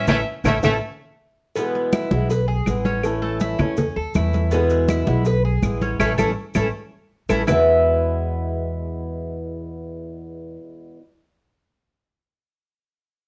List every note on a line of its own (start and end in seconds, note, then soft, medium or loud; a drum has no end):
0.07 0.22 A1 loud
0.07 0.21 E3 loud
0.07 0.18 A3 loud
0.07 0.21 A3 loud
0.07 0.20 C#4 loud
0.07 0.21 C#4 loud
0.07 0.20 E4 medium
0.07 0.20 A4 medium
0.07 0.21 E5 loud
0.07 low bongo loud
0.07 low conga loud
0.07 claves loud
0.07 maracas loud
0.44 0.59 A1 medium
0.44 0.57 E3 medium
0.44 0.54 A3 medium
0.44 0.57 A3 loud
0.44 0.57 C#4 medium
0.44 0.57 C#4 loud
0.44 0.57 E4 loud
0.44 0.57 A4 medium
0.44 0.58 E5 medium
0.44 low bongo medium
0.44 low conga loud
0.44 claves loud
0.44 maracas loud
0.63 0.78 A1 loud
0.63 0.76 E3 loud
0.63 0.76 A3 medium
0.63 0.73 A3 loud
0.63 0.76 C#4 medium
0.63 0.76 E4 loud
0.63 0.76 A4 medium
0.63 0.76 E5 medium
0.63 low bongo medium
0.63 low conga loud
0.63 claves medium
0.63 maracas loud
1.56 2.11 B2 medium
1.56 2.13 E3 medium
1.56 2.11 G#3 medium
1.56 1.92 B3 medium
1.56 2.11 B3 medium
1.56 2.10 E4 medium
1.56 cowbell loud
1.56 high conga soft
1.56 maracas medium
1.75 cowbell medium
1.75 high conga soft
1.92 2.29 E4 medium
1.92 cowbell medium
1.92 high conga loud
1.92 claves medium
1.92 maracas medium
2.11 2.63 B1 loud
2.11 2.30 E3 medium
2.11 2.30 G#3 medium
2.11 2.30 B3 medium
2.11 2.29 E4 medium
2.11 high conga loud
2.11 maracas soft
2.30 2.47 B4 medium
2.30 muted steel-string acoustic guitar stroke medium
2.30 cowbell loud
2.30 high conga soft
2.30 maracas medium
2.48 2.84 G#4 medium
2.48 high conga soft
2.66 3.53 A1 medium
2.66 3.02 E3 soft
2.66 3.04 G#3 medium
2.66 3.04 B3 medium
2.66 3.05 E4 medium
2.66 cowbell medium
2.66 high conga medium
2.66 claves medium
2.66 maracas medium
2.85 3.21 C#4 medium
2.85 cowbell medium
2.85 high conga medium
2.85 maracas soft
3.03 3.78 E3 medium
3.03 3.59 A3 medium
3.03 3.59 C#4 medium
3.03 3.59 E4 medium
3.03 cowbell loud
3.03 high conga soft
3.03 claves medium
3.03 maracas medium
3.22 3.40 A3 medium
3.22 high conga soft
3.40 3.59 E4 medium
3.40 cowbell medium
3.40 high conga loud
3.40 maracas medium
3.59 3.94 E2 medium
3.59 3.77 A3 medium
3.59 3.95 C#4 medium
3.59 3.78 C#4 medium
3.59 3.77 E4 medium
3.59 cowbell medium
3.59 high conga soft
3.59 low conga medium
3.59 claves medium
3.59 maracas soft
3.77 muted steel-string acoustic guitar stroke medium
3.77 cowbell loud
3.77 high conga soft
3.77 low conga medium
3.77 maracas medium
3.96 4.14 D#2 medium
3.96 4.15 A4 medium
3.96 high conga soft
4.14 5.02 E2 medium
4.14 4.51 E3 soft
4.14 4.52 A3 medium
4.14 4.52 C#4 soft
4.14 4.51 E4 medium
4.14 4.52 E4 medium
4.14 cowbell medium
4.14 high conga medium
4.14 claves medium
4.14 maracas medium
4.33 cowbell medium
4.33 high conga medium
4.33 maracas soft
4.51 5.07 B2 medium
4.51 5.08 E3 medium
4.51 5.06 G#3 medium
4.51 4.88 B3 medium
4.51 5.06 B3 medium
4.51 5.06 E4 medium
4.51 cowbell loud
4.51 maracas medium
4.70 cowbell medium
4.70 high conga soft
4.70 maracas medium
4.89 5.25 E4 medium
4.89 cowbell medium
4.89 high conga loud
4.89 claves medium
4.89 maracas medium
5.06 5.59 B1 loud
5.06 5.24 E3 medium
5.06 5.25 G#3 medium
5.06 5.25 B3 medium
5.06 5.25 E4 medium
5.06 high conga loud
5.06 maracas soft
5.25 5.44 B4 medium
5.25 muted steel-string acoustic guitar stroke medium
5.25 cowbell loud
5.25 high conga soft
5.25 maracas medium
5.45 5.81 G#4 medium
5.45 high conga soft
5.62 5.97 A1 medium
5.62 5.98 E3 soft
5.62 6.00 G#3 soft
5.62 6.00 B3 medium
5.62 6.00 E4 medium
5.62 cowbell medium
5.62 high conga medium
5.62 claves medium
5.62 maracas medium
5.81 5.99 C#4 medium
5.81 cowbell medium
5.81 high conga medium
5.81 maracas soft
5.99 6.13 A1 loud
5.99 6.12 E3 loud
5.99 6.12 A3 loud
5.99 6.12 C#4 loud
5.99 6.12 E4 medium
5.99 6.12 A4 medium
5.99 cowbell loud
5.99 high conga loud
5.99 claves loud
5.99 maracas loud
6.18 6.32 A1 loud
6.18 6.30 E3 loud
6.18 6.30 A3 loud
6.18 6.30 C#4 loud
6.18 6.30 C#4 medium
6.18 6.30 E4 medium
6.18 6.30 A4 loud
6.18 cowbell loud
6.18 high conga loud
6.18 claves loud
6.18 maracas loud
6.54 6.69 A1 loud
6.54 6.67 E3 medium
6.54 6.67 A3 loud
6.54 6.67 C#4 loud
6.54 6.67 C#4 medium
6.54 6.67 E4 medium
6.54 6.67 A4 medium
6.54 cowbell medium
6.54 high conga loud
6.54 claves medium
6.54 maracas medium
7.29 7.43 A1 medium
7.29 7.41 E3 medium
7.29 7.41 A3 medium
7.29 7.41 C#4 medium
7.29 7.41 E4 loud
7.29 7.41 A4 loud
7.29 cowbell medium
7.29 high conga medium
7.29 claves medium
7.29 maracas medium
7.47 10.98 E2 medium
7.47 10.56 E2 loud
7.47 10.98 B2 medium
7.47 10.99 E3 medium
7.47 11.00 G#3 medium
7.47 11.00 B3 medium
7.47 10.55 E4 medium
7.47 11.01 E4 medium
7.47 10.56 B4 medium
7.47 10.56 E5 loud
7.47 low bongo loud
7.47 low conga medium
7.47 claves loud
7.47 maracas loud